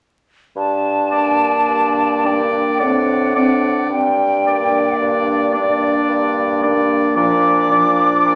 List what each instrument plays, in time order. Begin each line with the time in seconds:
0.56 bassoon G2, flute A5
1.12 french horn A#3, clarinet D4, oboe D5
1.68 bassoon G2
2.24 french horn A#3, clarinet D4, oboe D5, flute G5
2.80 bassoon A2, french horn C4, clarinet D4, oboe D5, flute F#5
3.35 french horn C4, clarinet D4, oboe D5
3.89 bassoon G2, flute G5
4.46 french horn A#3, clarinet D4, oboe D5
4.99 bassoon G2, flute D5
5.54 french horn A#3, clarinet D4, oboe D5
6.09 bassoon G2
6.63 french horn A#3, clarinet D4, oboe D5
7.16 bassoon A#2, french horn F3, clarinet D4, oboe D5, flute D6
7.70 french horn F3, clarinet D4, oboe D5
8.25 bassoon A#2